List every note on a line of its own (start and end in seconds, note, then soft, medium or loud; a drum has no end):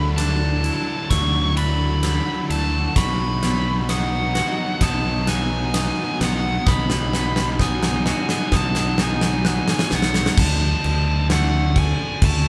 0.00 0.69 D2 medium
0.00 1.57 D3 medium
0.00 0.09 D3 medium
0.00 0.11 F#3 medium
0.00 1.10 A3 medium
0.00 2.93 E4 medium
0.00 2.93 F#4 medium
0.00 2.92 D5 medium
0.00 0.21 B5 medium
0.00 0.18 E6 medium
0.10 0.17 D3 medium
0.10 0.18 F#3 medium
0.16 0.25 D3 medium
0.16 0.26 F#3 medium
0.16 1.56 D4 medium
0.16 1.13 A5 medium
0.16 1.12 D6 medium
0.16 snare medium
0.16 ride medium
0.26 0.32 D3 soft
0.26 0.34 F#3 medium
0.32 0.40 D3 medium
0.32 0.42 F#3 medium
0.41 0.47 D3 medium
0.41 0.49 F#3 medium
0.48 0.56 D3 medium
0.48 0.57 F#3 medium
0.56 0.64 D3 soft
0.56 0.65 F#3 medium
0.64 0.72 D3 medium
0.64 0.72 F#3 medium
0.64 2.97 E4 medium
0.64 ride medium
0.72 0.79 D3 medium
0.72 0.80 F#3 medium
0.79 0.87 D3 medium
0.79 0.88 F#3 medium
0.88 0.95 D3 soft
0.88 0.96 F#3 medium
0.95 1.03 D3 medium
0.95 1.03 F#3 medium
1.03 1.10 D3 soft
1.03 1.11 F#3 medium
1.10 2.18 D2 medium
1.10 1.17 D3 medium
1.10 1.19 F#3 medium
1.10 2.49 A3 medium
1.10 1.54 C#6 loud
1.10 2.02 E6 medium
1.10 kick medium
1.10 snare medium
1.10 ride medium
1.17 1.25 D3 soft
1.17 1.27 F#3 medium
1.27 1.34 D3 medium
1.27 1.34 F#3 medium
1.34 1.41 D3 medium
1.34 1.42 F#3 medium
1.42 1.49 D3 medium
1.42 1.50 F#3 medium
1.49 1.57 D3 soft
1.49 1.57 F#3 medium
1.57 1.65 D3 medium
1.57 1.64 F#3 medium
1.57 2.97 D4 medium
1.57 2.46 B5 loud
1.57 ride medium
1.65 1.73 D3 soft
1.65 1.72 F#3 medium
1.72 1.80 D3 medium
1.72 1.80 F#3 medium
1.80 1.88 D3 medium
1.80 1.88 F#3 medium
1.89 1.95 D3 medium
1.89 1.96 F#3 medium
1.95 2.03 D3 medium
1.95 2.04 F#3 medium
2.03 2.10 D3 medium
2.03 5.54 F#3 medium
2.03 2.12 F#3 medium
2.03 2.97 E6 medium
2.03 snare medium
2.03 ride medium
2.11 2.18 D3 medium
2.11 2.19 F#3 medium
2.18 2.26 D3 medium
2.18 2.27 F#3 medium
2.27 2.35 D3 soft
2.27 2.34 F#3 medium
2.35 2.42 D3 medium
2.35 2.42 F#3 medium
2.42 2.49 D3 soft
2.42 2.49 F#3 medium
2.49 2.86 D2 medium
2.49 2.57 D3 medium
2.49 2.57 F#3 medium
2.49 2.97 A3 medium
2.49 2.99 A5 medium
2.49 ride medium
2.57 2.65 D3 soft
2.57 2.66 F#3 medium
2.65 2.73 D3 medium
2.65 2.72 F#3 medium
2.72 2.81 D3 soft
2.72 2.80 F#3 medium
2.81 2.89 D3 medium
2.81 2.88 F#3 medium
2.89 2.96 D3 soft
2.89 2.96 F#3 medium
2.96 4.39 B1 loud
2.96 5.28 B2 medium
2.96 3.04 B2 medium
2.96 3.05 F#3 medium
2.96 10.33 B3 medium
2.96 10.33 F#4 medium
2.96 10.33 D#5 medium
2.96 3.93 B5 loud
2.96 3.89 C#6 medium
2.96 kick loud
2.96 snare medium
2.96 ride medium
3.05 3.12 B2 medium
3.05 3.13 F#3 soft
3.12 3.19 B2 medium
3.12 3.20 F#3 medium
3.19 3.27 B2 medium
3.19 3.27 F#3 medium
3.28 3.35 B2 medium
3.28 3.35 F#3 medium
3.35 3.43 B2 medium
3.35 3.44 F#3 medium
3.43 3.51 B2 medium
3.43 3.51 F#3 medium
3.43 4.80 B3 medium
3.43 snare medium
3.43 ride medium
3.51 3.58 B2 medium
3.51 3.59 F#3 medium
3.58 3.66 B2 medium
3.58 3.67 F#3 medium
3.66 3.73 B2 medium
3.66 3.74 F#3 medium
3.73 3.80 B2 medium
3.73 3.82 F#3 medium
3.80 3.88 B2 medium
3.80 3.90 F#3 medium
3.89 3.97 B2 medium
3.89 3.97 F#3 medium
3.89 5.27 D#4 medium
3.89 4.83 F#5 medium
3.89 4.81 D#6 medium
3.89 snare medium
3.89 ride medium
3.97 4.03 B2 medium
3.97 4.05 F#3 medium
4.04 4.12 B2 medium
4.04 4.13 F#3 medium
4.12 4.19 B2 medium
4.12 4.21 F#3 medium
4.20 4.27 B2 medium
4.20 4.29 F#3 medium
4.28 4.35 B2 medium
4.28 4.34 F#3 medium
4.35 4.42 B2 medium
4.35 4.42 F#3 medium
4.35 7.85 F#4 medium
4.35 snare medium
4.35 ride medium
4.43 4.50 B2 medium
4.43 4.51 F#3 medium
4.51 4.58 B2 medium
4.51 4.59 F#3 medium
4.58 4.66 B2 medium
4.58 4.67 F#3 medium
4.66 4.73 B2 medium
4.66 4.74 F#3 medium
4.74 4.81 B2 medium
4.74 4.81 F#3 medium
4.81 5.89 B1 loud
4.81 4.88 B2 medium
4.81 4.90 F#3 medium
4.81 6.20 B3 medium
4.81 5.29 A5 medium
4.81 5.29 D#6 medium
4.81 kick medium
4.81 snare medium
4.81 ride loud
4.88 4.96 B2 medium
4.88 4.97 F#3 medium
4.97 5.04 B2 medium
4.97 5.05 F#3 medium
5.05 5.11 B2 medium
5.05 5.13 F#3 medium
5.12 5.19 B2 medium
5.12 5.20 F#3 medium
5.19 5.26 B2 medium
5.19 5.27 F#3 medium
5.26 5.34 B2 medium
5.26 5.35 F#3 medium
5.26 7.59 D#4 medium
5.26 6.18 G#5 loud
5.26 5.75 F#6 medium
5.26 snare medium
5.26 ride medium
5.34 5.42 B2 medium
5.34 5.44 F#3 medium
5.44 5.49 B2 medium
5.44 5.51 F#3 medium
5.50 5.57 B2 medium
5.50 5.59 F#3 medium
5.58 5.65 B2 medium
5.58 5.67 F#3 medium
5.67 5.74 B2 medium
5.67 5.74 F#3 medium
5.74 5.81 B2 medium
5.74 5.82 F#3 medium
5.74 8.06 F#3 medium
5.74 6.65 D#6 medium
5.74 snare medium
5.74 ride loud
5.82 5.88 B2 medium
5.82 5.90 F#3 medium
5.89 5.96 B2 medium
5.89 5.98 F#3 medium
5.97 6.04 B2 medium
5.97 6.05 F#3 medium
6.04 6.11 B2 medium
6.04 6.13 F#3 medium
6.12 6.18 B2 medium
6.12 6.20 F#3 medium
6.19 6.57 B1 medium
6.19 6.26 B2 medium
6.19 6.28 F#3 medium
6.19 7.13 B3 medium
6.19 snare medium
6.19 ride medium
6.24 6.35 B2 medium
6.24 6.70 F#5 medium
6.28 6.36 F#3 medium
6.35 6.43 B2 medium
6.35 6.44 F#3 medium
6.43 6.51 B2 medium
6.43 6.52 F#3 medium
6.51 6.58 B2 medium
6.51 6.58 F#3 medium
6.59 6.67 B2 medium
6.59 6.67 F#3 medium
6.66 8.10 B1 loud
6.66 6.75 B2 medium
6.66 8.99 B2 medium
6.66 6.75 F#3 medium
6.66 7.63 B5 loud
6.66 7.59 D#6 loud
6.66 kick loud
6.66 snare medium
6.75 6.82 B2 soft
6.75 6.83 F#3 medium
6.83 6.90 B2 medium
6.83 6.92 F#3 medium
6.90 6.97 B2 medium
6.90 6.99 F#3 medium
6.90 snare loud
6.98 7.05 B2 medium
6.98 7.06 F#3 medium
7.06 7.13 B2 soft
7.06 7.14 F#3 medium
7.13 7.20 B2 medium
7.13 7.22 F#3 medium
7.13 8.52 B3 medium
7.13 snare medium
7.21 7.28 B2 medium
7.21 7.29 F#3 medium
7.28 7.36 B2 medium
7.28 7.37 F#3 medium
7.36 7.44 B2 soft
7.36 7.45 F#3 medium
7.36 snare loud
7.45 7.51 B2 medium
7.45 7.52 F#3 medium
7.52 7.59 B2 medium
7.52 7.60 F#3 medium
7.59 7.67 B2 medium
7.59 7.68 F#3 medium
7.59 8.98 D#4 medium
7.59 8.55 G#5 medium
7.59 8.51 D#6 medium
7.59 kick medium
7.59 snare medium
7.68 7.75 B2 medium
7.68 7.76 F#3 medium
7.76 7.83 B2 medium
7.76 7.83 F#3 medium
7.83 7.91 B2 medium
7.83 7.91 F#3 medium
7.83 snare loud
7.91 7.97 B2 medium
7.91 7.99 F#3 medium
7.97 8.05 B2 medium
7.97 8.05 F#3 medium
8.06 8.13 B2 medium
8.06 8.13 F#3 medium
8.06 10.38 F#4 medium
8.06 snare loud
8.14 8.21 B2 medium
8.14 8.22 F#3 medium
8.21 8.28 B2 medium
8.21 8.29 F#3 medium
8.28 8.36 B2 medium
8.28 8.37 F#3 medium
8.28 snare loud
8.37 8.43 B2 medium
8.37 8.45 F#3 medium
8.44 8.51 B2 medium
8.44 8.52 F#3 medium
8.51 9.59 B1 loud
8.51 8.59 B2 medium
8.51 8.60 F#3 medium
8.51 9.92 B3 medium
8.51 9.45 D#6 medium
8.51 kick medium
8.51 snare loud
8.56 8.67 B2 medium
8.56 9.02 A5 loud
8.60 8.67 F#3 medium
8.67 8.74 B2 medium
8.67 8.75 F#3 medium
8.75 8.82 B2 medium
8.75 8.83 F#3 medium
8.75 snare loud
8.83 8.91 B2 medium
8.83 8.90 F#3 medium
8.90 8.98 B2 medium
8.90 8.98 F#3 medium
8.98 9.05 B2 medium
8.98 9.06 F#3 medium
8.98 10.37 D#4 medium
8.98 snare loud
9.03 9.13 B2 medium
9.03 9.14 F#3 medium
9.03 9.95 G#5 medium
9.13 9.20 B2 medium
9.13 9.21 F#3 medium
9.20 9.28 B2 medium
9.20 9.29 F#3 medium
9.20 snare loud
9.30 9.36 B2 medium
9.30 9.37 F#3 medium
9.37 9.44 B2 medium
9.37 9.45 F#3 medium
9.45 9.52 B2 medium
9.45 9.53 F#3 medium
9.45 10.38 F#3 medium
9.45 10.37 F#6 medium
9.45 snare loud
9.52 9.60 B2 medium
9.52 9.59 F#3 medium
9.60 9.68 B2 medium
9.60 9.67 F#3 medium
9.68 9.74 B2 medium
9.68 9.75 F#3 medium
9.68 snare loud
9.75 9.83 B2 medium
9.75 9.83 F#3 medium
9.79 9.91 F#3 medium
9.79 snare loud
9.84 9.90 B2 soft
9.91 10.27 B1 loud
9.91 9.98 B2 medium
9.91 9.99 F#3 medium
9.91 10.38 B3 medium
9.91 snare loud
9.96 10.06 B2 medium
9.96 10.07 F#3 medium
9.96 10.36 F#5 medium
10.02 10.14 B2 medium
10.02 snare loud
10.07 10.14 F#3 medium
10.14 10.21 B2 soft
10.14 10.22 F#3 medium
10.14 snare loud
10.22 10.29 B2 medium
10.22 10.29 F#3 medium
10.26 10.38 F#3 medium
10.26 snare loud
10.30 10.38 B2 soft
10.37 10.73 D2 loud
10.37 12.48 D3 medium
10.37 10.84 D3 medium
10.37 12.20 C#4 medium
10.37 12.48 F#4 medium
10.37 11.27 A5 loud
10.37 kick loud
10.37 crash loud
10.37 crash medium
10.84 11.91 D2 medium
10.84 11.77 D3 medium
10.84 crash medium
11.30 12.22 A3 medium
11.30 11.78 F#5 loud
11.30 snare loud
11.30 crash medium
11.76 12.48 D3 medium
11.76 12.24 G#5 loud
11.76 kick medium
11.76 crash medium
12.22 12.48 D2 loud
12.22 12.48 A3 medium
12.22 12.48 A5 loud
12.22 kick loud
12.22 crash medium